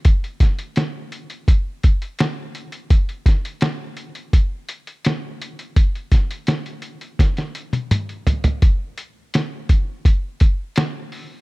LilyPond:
\new DrumStaff \with { instrumentName = "Drums" } \drummode { \time 4/4 \tempo 4 = 84 <hh bd>16 hh16 <hh bd sn>16 hh16 <hh sn>8 hh16 hh16 <hh bd>8 <hh bd>16 hh16 <hh sn>8 hh16 hh16 | <hh bd>16 hh16 <hh bd sn>16 hh16 <hh sn>8 hh16 hh16 <hh bd>8 hh16 hh16 <hh sn>8 hh16 hh16 | <hh bd>16 hh16 <hh bd sn>16 hh16 <hh sn>16 hh16 hh16 hh16 <hh bd sn>16 <hh sn>16 hh16 <hh tommh>16 <hh toml>16 hh16 <hh tomfh>16 <hh tomfh>16 | <hh bd>8 hh8 <hh sn>8 <hh bd>8 <hh bd>8 <hh bd>8 <hh sn>8 hho8 | }